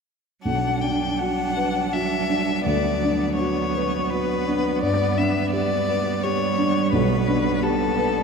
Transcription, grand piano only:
0.45 B1
0.82 D4
1.20 F#4
1.56 B4
1.94 F#4
2.29 D4
2.66 D2
3.04 D4
3.39 F#4
3.76 B4
4.11 F#4
4.47 D4
4.82 G2
5.17 D4
5.53 G4
5.89 B4
6.24 G4
6.58 D4
6.93 B1
7.28 D4
7.63 G4
7.97 B4

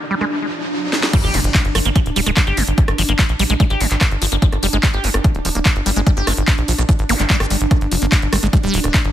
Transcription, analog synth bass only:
1.24 G1
1.34 F1
1.44 G1
1.65 G1
1.75 G1
1.85 G1
2.06 D1
2.16 D1
2.26 D1
2.47 G1
2.57 G1
2.68 G1
2.88 G1
2.98 G1
3.09 G1
3.29 A#1
3.39 A#1
3.50 A#1
3.70 G#1
3.81 G#1
3.91 G#1
4.11 G1
4.22 G1
4.32 G1
4.52 G1
4.63 F1
4.73 G1
4.94 G1
5.04 G1
5.14 G1
5.35 D1
5.45 D1
5.55 D1
5.76 G1
5.86 G1
5.96 G1
6.17 G1
6.27 G1
6.37 G1
6.58 A#1
6.68 A#1
6.78 A#1
6.99 G#1
7.09 G1
7.20 G1
7.40 G1
7.50 G1
7.61 G1
7.81 G1
7.92 F1
8.02 G1
8.22 G1
8.33 G1
8.43 G1
8.63 D1
8.74 D1
8.84 D1
9.05 G1

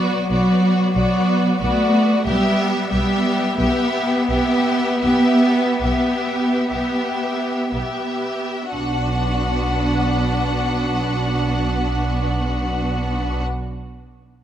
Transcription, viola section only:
Already playing: B3
0.31 B3
0.96 B3
1.61 B3
2.27 B3
2.94 B3
3.60 B3
4.29 B3
5.03 B3
5.83 B3
6.72 B3
7.74 B3
8.74 D4

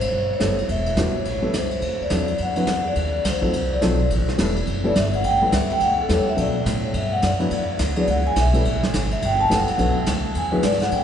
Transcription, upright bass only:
Already playing: G#1
0.12 G1
0.40 F#1
0.69 E1
0.97 E2
1.14 muted upright bass stroke
1.26 A1
1.54 C#2
1.82 D2
2.01 muted upright bass stroke
2.11 E2
2.39 F#2
2.67 E2
2.96 D#2
3.25 D2
3.53 C2
3.82 B1
4.11 A1
4.28 muted upright bass stroke
4.38 E1
4.68 F#1
4.96 G1
5.24 A1
5.52 C#2
5.69 muted upright bass stroke
5.81 D2
6.09 E2
6.26 muted upright bass stroke
6.38 B2
6.66 A2
6.94 G2
7.23 F#2
7.51 E2
7.79 D2
8.08 C#2
8.36 B1
8.65 A1
8.93 G#1
9.22 G1
9.51 A1
9.60 G1
9.70 E1
9.79 B1
9.96 muted upright bass stroke
10.07 D2
10.35 E2
10.63 G#2
10.92 A2

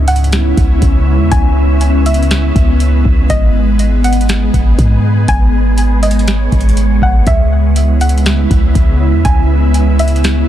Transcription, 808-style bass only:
Already playing: C#2
0.57 C#2
0.82 C#2
1.19 E2
1.32 C#2
2.56 C#2
3.05 C#2
3.30 G#1
4.54 G#1
4.79 G#2
5.28 G#1
6.52 G#1
7.02 G#1
7.27 C#2
8.51 C#2
8.75 C#2
9.13 E2
9.25 C#2

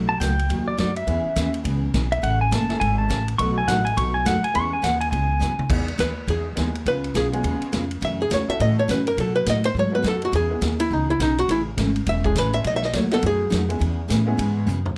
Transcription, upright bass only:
Already playing: B1
0.21 C#2
0.50 D#2
0.79 F#2
1.07 E2
1.26 muted upright bass stroke
1.36 D#2
1.65 C#2
1.94 B1
2.23 A1
2.52 F#1
2.81 G#1
3.10 A1
3.39 B1
3.68 A1
3.97 B1
4.26 F#2
4.55 E2
4.84 D#2
5.12 C#2
5.41 F#2
5.58 muted upright bass stroke
5.69 E2
5.99 D#2
6.28 E2
6.57 D#2
6.86 C#2
7.15 B1
7.44 D#2
7.61 muted upright bass stroke
7.73 F2
8.02 F#2
8.31 E2
8.48 muted upright bass stroke
8.60 A2
8.89 F#2
9.17 B2
9.47 A2
9.75 G#2
10.04 F#2
10.33 E2
10.61 D#2
10.91 C#2
11.20 B1
11.48 A1
11.77 G#1
12.07 E1
12.36 A1
12.64 B1
12.94 D#2
13.23 F#2
13.52 F2
13.81 E2
14.10 A2
14.38 G#2
14.66 F#2

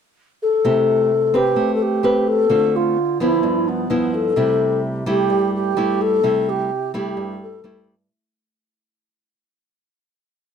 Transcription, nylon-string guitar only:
0.65 C3 A3 E4 G4
1.34 C4 G4 B4
1.56 A3
2.03 C4 G4 B4
2.50 D3 A3 C4 F4
3.20 F3 B3 E4
3.43 G2
3.90 F3 B3 E4
4.36 C3 G3 A3 E4
5.06 G3 A3 E4
5.30 G2
5.77 G3 A3 E4
6.23 C3 G3 A3 E4
6.94 G3 A3 E4
7.17 G2
7.64 G3 A3 E4

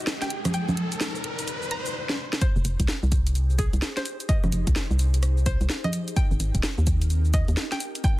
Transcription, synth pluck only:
0.22 G5
0.54 G5
1.71 A#5
2.42 C5
3.58 G#4
3.97 C5
4.29 D#5
5.46 C5
5.84 D#5
6.16 G5
7.34 D#5
7.72 G5
8.04 G5

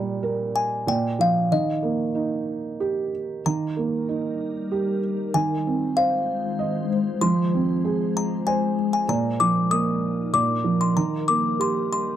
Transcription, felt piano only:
Already playing: A#2 G3
0.23 A#4
0.87 A#2
1.19 F3
1.52 D#3
1.83 A#3
2.15 D#4
2.80 G4
3.46 D#3
3.77 A#3
4.09 D#4
4.72 G4
5.34 D#3
5.67 C4
5.97 C5
6.59 D#5
7.21 F3
7.54 C4
7.84 G#4
8.47 C5
9.08 A#2
9.40 F3
9.71 A#3
10.33 A#2
10.64 F3
10.97 D#3
11.28 A#3
11.59 G4

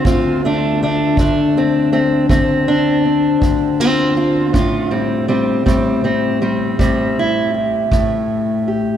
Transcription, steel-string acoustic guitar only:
0.04 D2 C4 F4
0.45 A3 D4
0.82 A3 D4
1.18 D2 A3 D4
1.57 A3 C4
1.92 A3 C4
2.30 D2 A3 C4
2.68 D4
3.05 C4
3.41 D2
3.80 C4 F4
4.17 C4 F4
4.53 A2 C#4 F4
4.91 G3 C4
5.28 G3 C4
5.66 A2 G3 C4
6.04 G3 C4
6.42 G3 C4
6.79 A2 G3 C4
7.19 E4
7.54 G4
7.91 A2 A3
8.68 G4

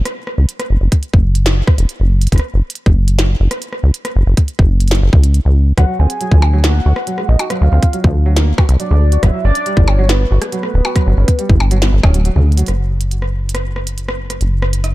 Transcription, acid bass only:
0.38 C#2
0.70 F#1
0.81 F#1
1.14 F#1
1.78 E1
2.00 F#1
2.32 F#1
2.54 F#1
2.86 F#1
3.40 F#1
3.83 C#2
4.16 F#1
4.27 F#1
4.59 F#1
5.02 F#1
5.13 C#2
5.45 C#2
5.78 D2
5.99 D2
6.32 D2
6.86 D2
7.29 A#1
7.61 D2
7.72 D2
8.04 D2
8.69 C2
8.91 D2
9.23 G1
9.45 G1
9.77 G1
10.31 G1
10.74 D1
11.06 G1
11.17 G1
11.50 G1
11.93 G1
12.03 D1
12.36 D2
12.68 F#1
14.41 F#1

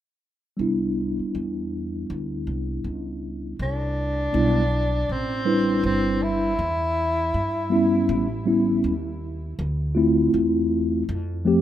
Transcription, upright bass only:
0.59 C2
1.19 muted upright bass stroke
1.35 E2
2.10 D2
2.47 C2
2.84 C#2
3.59 C2
4.34 B1
5.09 A1
5.83 G1
6.59 E2
7.34 G2
8.09 A1
8.84 D#2
9.59 D2
10.34 E2
11.09 F2

